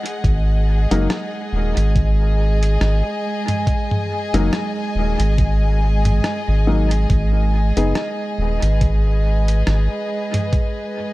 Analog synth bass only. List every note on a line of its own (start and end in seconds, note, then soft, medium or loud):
0.24 0.86 G#1 loud
0.91 1.08 F#1 medium
1.53 1.74 D#1 medium
1.77 2.78 G#1 medium
2.81 3.02 G#1 medium
4.34 4.50 F#1 loud
4.95 5.17 D#1 medium
5.20 6.20 G#1 medium
6.48 7.06 G#1 medium
7.10 7.72 G#1 loud
7.77 7.93 F#1 medium
8.38 8.60 D#1 medium
8.62 9.63 G#1 medium
9.67 9.88 G#1 medium